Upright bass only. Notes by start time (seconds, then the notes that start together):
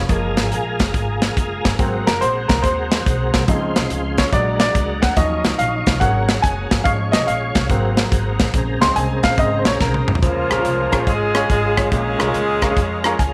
0.09 F#1
0.38 G#1
0.52 A#1
0.80 F#1
0.94 G#1
1.37 F#1
1.65 G1
1.79 G#1
2.07 F#1
2.22 A#1
2.49 C2
2.64 D#2
3.06 B1
3.34 C2
3.48 C#2
3.77 C2
3.90 C#2
4.33 A#1
4.75 C#2
5.03 D2
5.17 D#2
5.44 C#2
5.58 A#1
5.87 C2
6.01 G#1
6.44 F#1
6.71 G1
6.86 G#1
7.14 C2
7.28 A#1
7.56 C2
7.70 G#1
8.12 G#1
8.40 A1
8.54 A#1
8.82 C#2
8.96 C2
9.24 A#1
9.38 G#1
9.66 A#1
9.81 B1
10.08 C2
10.22 C#2
10.50 A#1
10.65 C2
10.93 A#1
11.07 G#1
11.50 G#1
11.92 A#1
12.20 C2
12.35 C#2
12.76 F2
13.19 C#2